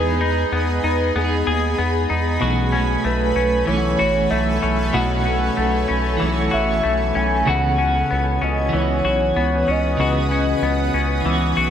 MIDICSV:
0, 0, Header, 1, 6, 480
1, 0, Start_track
1, 0, Tempo, 631579
1, 1835, Time_signature, 4, 2, 24, 8
1, 8892, End_track
2, 0, Start_track
2, 0, Title_t, "Ambient pad"
2, 0, Program_c, 0, 92
2, 0, Note_on_c, 0, 68, 82
2, 0, Note_on_c, 0, 75, 76
2, 0, Note_on_c, 0, 80, 74
2, 0, Note_on_c, 0, 83, 93
2, 1808, Note_off_c, 0, 68, 0
2, 1809, Note_off_c, 0, 75, 0
2, 1837, Note_on_c, 0, 69, 89
2, 1839, Note_on_c, 0, 73, 79
2, 5646, Note_off_c, 0, 69, 0
2, 5647, Note_off_c, 0, 73, 0
2, 5648, Note_off_c, 0, 83, 0
2, 5674, Note_on_c, 0, 78, 76
2, 5674, Note_on_c, 0, 87, 95
2, 5675, Note_on_c, 0, 71, 81
2, 8892, Note_off_c, 0, 71, 0
2, 8892, Note_off_c, 0, 78, 0
2, 8892, Note_off_c, 0, 80, 0
2, 8892, Note_off_c, 0, 87, 0
2, 8892, End_track
3, 0, Start_track
3, 0, Title_t, "Soft synth lead"
3, 0, Program_c, 1, 80
3, 0, Note_on_c, 1, 71, 100
3, 373, Note_off_c, 1, 71, 0
3, 416, Note_on_c, 1, 71, 99
3, 892, Note_on_c, 1, 68, 87
3, 904, Note_off_c, 1, 71, 0
3, 1604, Note_off_c, 1, 68, 0
3, 2320, Note_on_c, 1, 71, 90
3, 2767, Note_off_c, 1, 71, 0
3, 2798, Note_on_c, 1, 73, 100
3, 3268, Note_on_c, 1, 76, 103
3, 3280, Note_off_c, 1, 73, 0
3, 3747, Note_on_c, 1, 78, 114
3, 3758, Note_off_c, 1, 76, 0
3, 4711, Note_off_c, 1, 78, 0
3, 4960, Note_on_c, 1, 76, 106
3, 5443, Note_on_c, 1, 80, 109
3, 5454, Note_off_c, 1, 76, 0
3, 5687, Note_on_c, 1, 78, 109
3, 5698, Note_off_c, 1, 80, 0
3, 6403, Note_on_c, 1, 75, 96
3, 6414, Note_off_c, 1, 78, 0
3, 6644, Note_on_c, 1, 73, 97
3, 6656, Note_off_c, 1, 75, 0
3, 7120, Note_off_c, 1, 73, 0
3, 7126, Note_on_c, 1, 73, 91
3, 7376, Note_on_c, 1, 75, 96
3, 7388, Note_off_c, 1, 73, 0
3, 8806, Note_off_c, 1, 75, 0
3, 8892, End_track
4, 0, Start_track
4, 0, Title_t, "Clean electric guitar"
4, 0, Program_c, 2, 27
4, 0, Note_on_c, 2, 52, 84
4, 0, Note_on_c, 2, 59, 81
4, 0, Note_on_c, 2, 63, 80
4, 0, Note_on_c, 2, 68, 91
4, 138, Note_off_c, 2, 68, 0
4, 147, Note_on_c, 2, 68, 52
4, 151, Note_off_c, 2, 52, 0
4, 158, Note_off_c, 2, 59, 0
4, 164, Note_off_c, 2, 63, 0
4, 172, Note_on_c, 2, 63, 50
4, 192, Note_on_c, 2, 59, 44
4, 871, Note_off_c, 2, 68, 0
4, 883, Note_off_c, 2, 63, 0
4, 884, Note_off_c, 2, 59, 0
4, 887, Note_on_c, 2, 59, 61
4, 921, Note_on_c, 2, 63, 65
4, 946, Note_on_c, 2, 68, 69
4, 1820, Note_on_c, 2, 47, 93
4, 1830, Note_on_c, 2, 52, 95
4, 1837, Note_off_c, 2, 59, 0
4, 1840, Note_on_c, 2, 57, 92
4, 1847, Note_off_c, 2, 63, 0
4, 1850, Note_on_c, 2, 61, 94
4, 1852, Note_off_c, 2, 68, 0
4, 1855, Note_on_c, 2, 66, 96
4, 2053, Note_off_c, 2, 66, 0
4, 2062, Note_on_c, 2, 66, 67
4, 2067, Note_off_c, 2, 47, 0
4, 2072, Note_off_c, 2, 52, 0
4, 2075, Note_off_c, 2, 61, 0
4, 2078, Note_off_c, 2, 57, 0
4, 2084, Note_on_c, 2, 61, 61
4, 2103, Note_on_c, 2, 57, 54
4, 2773, Note_on_c, 2, 52, 59
4, 2796, Note_off_c, 2, 66, 0
4, 2801, Note_off_c, 2, 57, 0
4, 2810, Note_on_c, 2, 57, 63
4, 2835, Note_off_c, 2, 61, 0
4, 2838, Note_on_c, 2, 61, 67
4, 2867, Note_on_c, 2, 66, 69
4, 3746, Note_on_c, 2, 47, 76
4, 3751, Note_off_c, 2, 52, 0
4, 3752, Note_off_c, 2, 57, 0
4, 3754, Note_on_c, 2, 52, 79
4, 3761, Note_on_c, 2, 57, 84
4, 3765, Note_off_c, 2, 61, 0
4, 3768, Note_on_c, 2, 61, 82
4, 3772, Note_off_c, 2, 66, 0
4, 3776, Note_on_c, 2, 66, 100
4, 3969, Note_off_c, 2, 66, 0
4, 3978, Note_on_c, 2, 66, 56
4, 3990, Note_off_c, 2, 47, 0
4, 3992, Note_off_c, 2, 61, 0
4, 3994, Note_off_c, 2, 52, 0
4, 3998, Note_off_c, 2, 57, 0
4, 4002, Note_on_c, 2, 61, 49
4, 4019, Note_on_c, 2, 57, 50
4, 4688, Note_on_c, 2, 52, 72
4, 4710, Note_off_c, 2, 66, 0
4, 4717, Note_off_c, 2, 57, 0
4, 4727, Note_on_c, 2, 57, 71
4, 4754, Note_off_c, 2, 61, 0
4, 4757, Note_on_c, 2, 61, 76
4, 4782, Note_on_c, 2, 66, 79
4, 5665, Note_on_c, 2, 49, 77
4, 5674, Note_off_c, 2, 52, 0
4, 5677, Note_on_c, 2, 52, 75
4, 5680, Note_off_c, 2, 57, 0
4, 5683, Note_on_c, 2, 59, 79
4, 5686, Note_off_c, 2, 61, 0
4, 5689, Note_on_c, 2, 61, 94
4, 5697, Note_off_c, 2, 66, 0
4, 5700, Note_on_c, 2, 66, 95
4, 5888, Note_off_c, 2, 66, 0
4, 5897, Note_on_c, 2, 66, 57
4, 5910, Note_off_c, 2, 49, 0
4, 5911, Note_off_c, 2, 61, 0
4, 5916, Note_off_c, 2, 52, 0
4, 5919, Note_off_c, 2, 59, 0
4, 5920, Note_on_c, 2, 61, 53
4, 5937, Note_on_c, 2, 59, 41
4, 6605, Note_on_c, 2, 52, 65
4, 6628, Note_off_c, 2, 66, 0
4, 6637, Note_off_c, 2, 61, 0
4, 6640, Note_off_c, 2, 59, 0
4, 6643, Note_on_c, 2, 59, 59
4, 6674, Note_on_c, 2, 61, 68
4, 6699, Note_on_c, 2, 66, 68
4, 7578, Note_on_c, 2, 49, 73
4, 7580, Note_off_c, 2, 52, 0
4, 7589, Note_on_c, 2, 52, 77
4, 7596, Note_off_c, 2, 59, 0
4, 7596, Note_off_c, 2, 61, 0
4, 7599, Note_on_c, 2, 59, 85
4, 7605, Note_on_c, 2, 61, 84
4, 7609, Note_off_c, 2, 66, 0
4, 7612, Note_on_c, 2, 66, 87
4, 7810, Note_off_c, 2, 66, 0
4, 7819, Note_on_c, 2, 66, 61
4, 7826, Note_off_c, 2, 49, 0
4, 7831, Note_off_c, 2, 61, 0
4, 7832, Note_off_c, 2, 52, 0
4, 7837, Note_off_c, 2, 59, 0
4, 7840, Note_on_c, 2, 61, 53
4, 7857, Note_on_c, 2, 59, 42
4, 8520, Note_on_c, 2, 52, 67
4, 8551, Note_off_c, 2, 59, 0
4, 8554, Note_on_c, 2, 59, 68
4, 8558, Note_off_c, 2, 61, 0
4, 8587, Note_on_c, 2, 61, 70
4, 8611, Note_off_c, 2, 66, 0
4, 8614, Note_on_c, 2, 66, 77
4, 8892, Note_off_c, 2, 52, 0
4, 8892, Note_off_c, 2, 59, 0
4, 8892, Note_off_c, 2, 61, 0
4, 8892, Note_off_c, 2, 66, 0
4, 8892, End_track
5, 0, Start_track
5, 0, Title_t, "Clean electric guitar"
5, 0, Program_c, 3, 27
5, 0, Note_on_c, 3, 59, 63
5, 0, Note_on_c, 3, 63, 59
5, 0, Note_on_c, 3, 68, 69
5, 149, Note_off_c, 3, 63, 0
5, 159, Note_on_c, 3, 63, 63
5, 396, Note_off_c, 3, 59, 0
5, 399, Note_on_c, 3, 59, 67
5, 629, Note_off_c, 3, 63, 0
5, 638, Note_on_c, 3, 63, 59
5, 876, Note_off_c, 3, 59, 0
5, 879, Note_on_c, 3, 59, 78
5, 1108, Note_off_c, 3, 68, 0
5, 1117, Note_on_c, 3, 68, 71
5, 1353, Note_off_c, 3, 59, 0
5, 1356, Note_on_c, 3, 59, 67
5, 1585, Note_off_c, 3, 63, 0
5, 1594, Note_on_c, 3, 63, 61
5, 1831, Note_on_c, 3, 47, 85
5, 1833, Note_off_c, 3, 68, 0
5, 1836, Note_on_c, 3, 66, 72
5, 1882, Note_off_c, 3, 63, 0
5, 2070, Note_on_c, 3, 61, 65
5, 2093, Note_off_c, 3, 59, 0
5, 2315, Note_on_c, 3, 57, 68
5, 2550, Note_off_c, 3, 61, 0
5, 2553, Note_on_c, 3, 61, 66
5, 2791, Note_on_c, 3, 52, 75
5, 3030, Note_off_c, 3, 66, 0
5, 3033, Note_on_c, 3, 66, 69
5, 3264, Note_off_c, 3, 57, 0
5, 3273, Note_on_c, 3, 57, 64
5, 3512, Note_off_c, 3, 61, 0
5, 3515, Note_on_c, 3, 61, 62
5, 3741, Note_off_c, 3, 47, 0
5, 3751, Note_on_c, 3, 47, 84
5, 3754, Note_off_c, 3, 66, 0
5, 3757, Note_on_c, 3, 66, 68
5, 3991, Note_off_c, 3, 61, 0
5, 3994, Note_on_c, 3, 61, 64
5, 4224, Note_off_c, 3, 57, 0
5, 4233, Note_on_c, 3, 57, 68
5, 4467, Note_off_c, 3, 61, 0
5, 4470, Note_on_c, 3, 61, 63
5, 4707, Note_off_c, 3, 52, 0
5, 4710, Note_on_c, 3, 52, 71
5, 4947, Note_off_c, 3, 66, 0
5, 4950, Note_on_c, 3, 66, 68
5, 5185, Note_off_c, 3, 57, 0
5, 5194, Note_on_c, 3, 57, 62
5, 5432, Note_off_c, 3, 61, 0
5, 5435, Note_on_c, 3, 61, 56
5, 5671, Note_off_c, 3, 47, 0
5, 5674, Note_on_c, 3, 49, 77
5, 5677, Note_off_c, 3, 66, 0
5, 5680, Note_on_c, 3, 66, 70
5, 5722, Note_off_c, 3, 57, 0
5, 5912, Note_off_c, 3, 61, 0
5, 5915, Note_on_c, 3, 61, 62
5, 6160, Note_on_c, 3, 59, 63
5, 6387, Note_off_c, 3, 61, 0
5, 6396, Note_on_c, 3, 61, 60
5, 6634, Note_off_c, 3, 52, 0
5, 6637, Note_on_c, 3, 52, 74
5, 6874, Note_off_c, 3, 66, 0
5, 6877, Note_on_c, 3, 66, 66
5, 7114, Note_off_c, 3, 59, 0
5, 7117, Note_on_c, 3, 59, 62
5, 7347, Note_off_c, 3, 61, 0
5, 7356, Note_on_c, 3, 61, 58
5, 7589, Note_off_c, 3, 49, 0
5, 7598, Note_on_c, 3, 49, 86
5, 7600, Note_off_c, 3, 66, 0
5, 7603, Note_on_c, 3, 66, 73
5, 7828, Note_off_c, 3, 61, 0
5, 7837, Note_on_c, 3, 61, 61
5, 8074, Note_off_c, 3, 59, 0
5, 8077, Note_on_c, 3, 59, 66
5, 8306, Note_off_c, 3, 61, 0
5, 8316, Note_on_c, 3, 61, 61
5, 8546, Note_off_c, 3, 52, 0
5, 8555, Note_on_c, 3, 52, 70
5, 8790, Note_off_c, 3, 66, 0
5, 8793, Note_on_c, 3, 66, 72
5, 8892, Note_off_c, 3, 49, 0
5, 8892, Note_off_c, 3, 52, 0
5, 8892, Note_off_c, 3, 59, 0
5, 8892, Note_off_c, 3, 61, 0
5, 8892, Note_off_c, 3, 66, 0
5, 8892, End_track
6, 0, Start_track
6, 0, Title_t, "Analog synth bass"
6, 0, Program_c, 4, 38
6, 0, Note_on_c, 4, 40, 112
6, 340, Note_off_c, 4, 40, 0
6, 398, Note_on_c, 4, 40, 104
6, 608, Note_off_c, 4, 40, 0
6, 638, Note_on_c, 4, 40, 98
6, 848, Note_off_c, 4, 40, 0
6, 880, Note_on_c, 4, 40, 102
6, 1089, Note_off_c, 4, 40, 0
6, 1120, Note_on_c, 4, 39, 95
6, 1329, Note_off_c, 4, 39, 0
6, 1361, Note_on_c, 4, 40, 99
6, 1569, Note_off_c, 4, 40, 0
6, 1603, Note_on_c, 4, 40, 106
6, 1811, Note_off_c, 4, 40, 0
6, 1841, Note_on_c, 4, 35, 107
6, 2261, Note_off_c, 4, 35, 0
6, 2319, Note_on_c, 4, 35, 113
6, 2528, Note_off_c, 4, 35, 0
6, 2554, Note_on_c, 4, 35, 99
6, 2766, Note_off_c, 4, 35, 0
6, 2801, Note_on_c, 4, 35, 94
6, 3010, Note_off_c, 4, 35, 0
6, 3047, Note_on_c, 4, 33, 87
6, 3253, Note_off_c, 4, 33, 0
6, 3281, Note_on_c, 4, 35, 110
6, 3490, Note_off_c, 4, 35, 0
6, 3524, Note_on_c, 4, 35, 108
6, 3731, Note_off_c, 4, 35, 0
6, 3763, Note_on_c, 4, 35, 108
6, 4182, Note_off_c, 4, 35, 0
6, 4243, Note_on_c, 4, 35, 109
6, 4451, Note_off_c, 4, 35, 0
6, 4486, Note_on_c, 4, 35, 109
6, 4693, Note_off_c, 4, 35, 0
6, 4731, Note_on_c, 4, 35, 108
6, 4935, Note_off_c, 4, 35, 0
6, 4971, Note_on_c, 4, 33, 97
6, 5175, Note_off_c, 4, 33, 0
6, 5207, Note_on_c, 4, 35, 94
6, 5413, Note_off_c, 4, 35, 0
6, 5443, Note_on_c, 4, 35, 100
6, 5651, Note_off_c, 4, 35, 0
6, 5691, Note_on_c, 4, 37, 114
6, 6106, Note_off_c, 4, 37, 0
6, 6172, Note_on_c, 4, 37, 108
6, 6376, Note_off_c, 4, 37, 0
6, 6403, Note_on_c, 4, 37, 94
6, 6611, Note_off_c, 4, 37, 0
6, 6644, Note_on_c, 4, 37, 102
6, 6851, Note_off_c, 4, 37, 0
6, 6879, Note_on_c, 4, 35, 98
6, 7088, Note_off_c, 4, 35, 0
6, 7120, Note_on_c, 4, 37, 104
6, 7329, Note_off_c, 4, 37, 0
6, 7362, Note_on_c, 4, 37, 103
6, 7570, Note_off_c, 4, 37, 0
6, 7596, Note_on_c, 4, 37, 109
6, 8018, Note_off_c, 4, 37, 0
6, 8075, Note_on_c, 4, 37, 112
6, 8286, Note_off_c, 4, 37, 0
6, 8316, Note_on_c, 4, 37, 107
6, 8527, Note_off_c, 4, 37, 0
6, 8554, Note_on_c, 4, 37, 102
6, 8766, Note_off_c, 4, 37, 0
6, 8797, Note_on_c, 4, 35, 95
6, 8892, Note_off_c, 4, 35, 0
6, 8892, End_track
0, 0, End_of_file